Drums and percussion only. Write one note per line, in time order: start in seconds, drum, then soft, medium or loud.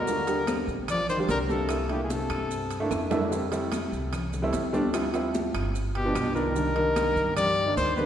0.07 high conga soft
0.07 maracas medium
0.27 high conga soft
0.27 high timbale medium
0.27 maracas medium
0.47 high conga loud
0.47 high timbale medium
0.47 claves medium
0.47 maracas medium
0.68 high conga soft
0.68 maracas soft
0.88 high conga soft
0.88 low conga medium
0.88 high timbale medium
0.88 claves medium
0.88 maracas medium
1.09 high conga soft
1.09 low conga medium
1.09 maracas medium
1.29 high conga medium
1.29 high timbale medium
1.29 low timbale medium
1.29 maracas medium
1.49 high conga medium
1.49 maracas soft
1.69 high conga soft
1.69 high timbale loud
1.69 claves medium
1.69 maracas medium
1.89 high conga soft
1.89 high timbale medium
2.10 high conga loud
2.10 maracas medium
2.30 high conga soft
2.30 high timbale medium
2.30 claves medium
2.30 maracas soft
2.51 high conga soft
2.51 maracas medium
2.71 high conga soft
2.71 high timbale medium
2.71 maracas medium
2.91 high conga medium
2.91 high timbale medium
2.91 claves medium
2.91 maracas medium
3.11 high conga medium
3.11 low timbale medium
3.11 maracas soft
3.32 high conga soft
3.32 maracas medium
3.52 high conga soft
3.52 high timbale medium
3.52 maracas medium
3.72 high conga loud
3.72 high timbale medium
3.72 claves medium
3.72 maracas medium
3.93 high conga soft
3.93 maracas soft
4.13 high conga soft
4.13 low conga medium
4.13 high timbale medium
4.13 claves medium
4.13 maracas medium
4.33 high conga soft
4.33 low conga medium
4.33 maracas medium
4.53 high conga medium
4.53 high timbale medium
4.53 maracas medium
4.74 high conga medium
4.74 maracas soft
4.94 high conga soft
4.94 high timbale loud
4.94 claves medium
4.94 maracas medium
5.14 high conga soft
5.14 high timbale medium
5.14 maracas medium
5.34 high conga loud
5.34 maracas medium
5.55 high conga soft
5.55 high timbale medium
5.55 claves medium
5.55 maracas soft
5.75 high conga soft
5.75 maracas medium
5.95 high conga soft
5.95 high timbale medium
6.15 high conga medium
6.15 high timbale medium
6.15 claves medium
6.15 maracas medium
6.36 maracas soft
6.56 high conga soft
6.56 maracas medium
6.76 high conga soft
6.76 high timbale medium
6.96 high conga medium
6.96 high timbale medium
6.96 claves medium
6.96 maracas medium
7.17 high conga soft
7.17 maracas soft
7.37 high conga soft
7.37 low conga medium
7.37 high timbale medium
7.37 claves medium
7.37 maracas medium
7.77 high conga medium
7.77 high timbale medium
7.77 maracas medium
7.98 high conga medium
7.98 maracas soft